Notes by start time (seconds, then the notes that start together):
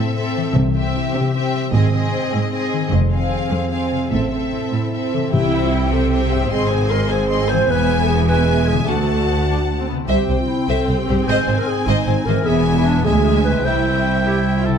Already playing: A2 C4 E4 A4 E5
0.15 C4 A4 E5
0.36 E3
0.55 C2 C3
0.75 C4 G4 E5
0.96 E4
1.14 C3 G4
1.34 C4 G4 E5
1.55 G3
1.73 G#1 G#2 C4 G#4 D#5
1.93 C4 G#4 D#5
2.13 D#4
2.33 G#2 G#4
2.53 C4 G#4 D#5
2.73 D#3
2.92 F1 F2
3.12 C4 G#4 F5
3.31 F4
3.51 F2 G#4
3.71 C4 G#4 F5
3.91 C3
4.12 A1 A2 C4 A4 E5
4.32 C4 A4 E5
4.53 E4
4.72 A2 E4 A4
4.92 C4 A4 E5
5.13 C3 E3 A4
5.20 C4
5.24 E4
5.29 G4
5.33 C2 C3 E4 G4 E5 G5
5.53 C5 E5 G5
5.64 F4
5.72 E4 G4 E5 G5
5.92 C4 A4 C5 E5 G5
6.11 G4 E5 G5
6.22 G4
6.30 G#2 G4 C5 E5 G5
6.38 C4
6.42 D#4
6.46 G#4 C5
6.51 G#1 G#2 G#4 D#5 C6
6.70 C5 G#5
6.90 G#4 A#4 D#5 C6
7.10 C4 G#4 C5 G#5
7.30 G#4 D#5 C6
7.49 E3 C5 G#5
7.56 G#3
7.61 E4
7.65 E1 E2 B4 G#5
7.69 B3 B4 E5 G#5
8.01 A4
8.09 G#4
8.29 G#3 B4 E5 G#5
8.68 D3 G#4
8.75 A3
8.80 F#4
8.84 D2 D5 A5
8.88 D2 A3 F#4 F#5
9.49 D4
9.79 C4
9.89 C3 B3
9.95 C4
10.00 E4
10.05 C2 C4 G4 C5 E5
10.09 C2 G4 G5
10.29 C2 C5
10.40 F4
10.48 E4
10.68 C2 A4 C5 E5
10.88 C2 C5
10.98 G4
11.08 C2 G#2 G4 C5
11.14 C4
11.19 D#4
11.23 G#4
11.27 G#1 G#2 C5 D#5 G#5
11.48 G#1 G#2 C5
11.57 A#4
11.67 G#4
11.86 G#1 G#2 D#4 C5 D#5
12.06 G#1 G#2 C5
12.26 G#1 G#2 E3 G#4 A#4 C5
12.33 B3
12.37 E4
12.42 G#4 G#5
12.46 E1 E2 B3 G#4 E5
12.76 E4
12.85 D4
13.04 D2 G#3 G#4 E5 G#5
13.25 G#4
13.44 B4
13.48 C3
13.53 C4
13.58 E4
13.62 C2 E4 G4 C5 G5
13.67 E5
14.26 E4 G4
14.57 F4
14.66 C3 E4 A4
14.73 C4